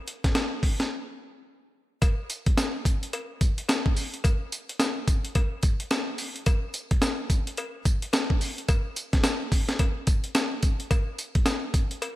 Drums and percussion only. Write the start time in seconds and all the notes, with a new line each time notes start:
0.08 closed hi-hat
0.24 kick, snare, closed hi-hat
0.35 snare, closed hi-hat, cowbell
0.63 kick, open hi-hat
0.80 snare, closed hi-hat
2.02 kick, closed hi-hat, tambourine, cowbell
2.30 closed hi-hat, tambourine
2.46 kick, closed hi-hat
2.58 snare, closed hi-hat, tambourine, cowbell
2.85 kick, closed hi-hat, tambourine
3.03 closed hi-hat
3.13 closed hi-hat, cowbell
3.41 kick, closed hi-hat, tambourine
3.58 closed hi-hat
3.69 snare, closed hi-hat, tambourine, cowbell
3.86 kick
3.96 open hi-hat, tambourine
4.14 closed hi-hat
4.24 kick, closed hi-hat, tambourine, cowbell
4.52 closed hi-hat, tambourine
4.69 closed hi-hat
4.80 snare, closed hi-hat, tambourine, cowbell
5.08 kick, closed hi-hat, tambourine
5.25 closed hi-hat
5.35 kick, closed hi-hat, cowbell
5.63 kick, closed hi-hat, tambourine
5.80 closed hi-hat
5.91 snare, closed hi-hat, tambourine, cowbell
6.18 open hi-hat, tambourine
6.36 closed hi-hat
6.46 kick, closed hi-hat, tambourine, cowbell
6.74 closed hi-hat, tambourine
6.91 kick, closed hi-hat
7.02 snare, closed hi-hat, tambourine, cowbell
7.30 kick, closed hi-hat, tambourine
7.47 closed hi-hat
7.57 closed hi-hat, cowbell
7.85 kick, closed hi-hat, tambourine
8.02 closed hi-hat
8.13 snare, closed hi-hat, tambourine, cowbell
8.30 kick
8.41 open hi-hat, tambourine
8.58 closed hi-hat
8.68 kick, closed hi-hat, tambourine, cowbell
8.96 closed hi-hat, tambourine
9.13 kick, snare, closed hi-hat
9.24 snare, closed hi-hat, tambourine, cowbell
9.52 kick, open hi-hat, tambourine
9.69 snare, closed hi-hat
9.79 kick, closed hi-hat, cowbell
10.07 kick, closed hi-hat, tambourine
10.24 closed hi-hat
10.35 snare, closed hi-hat, tambourine, cowbell
10.62 kick, closed hi-hat, tambourine
10.80 closed hi-hat
10.91 kick, closed hi-hat, tambourine, cowbell
11.18 closed hi-hat, tambourine
11.35 kick, closed hi-hat
11.46 snare, closed hi-hat, tambourine, cowbell
11.74 kick, closed hi-hat, tambourine
11.91 closed hi-hat
12.02 closed hi-hat, cowbell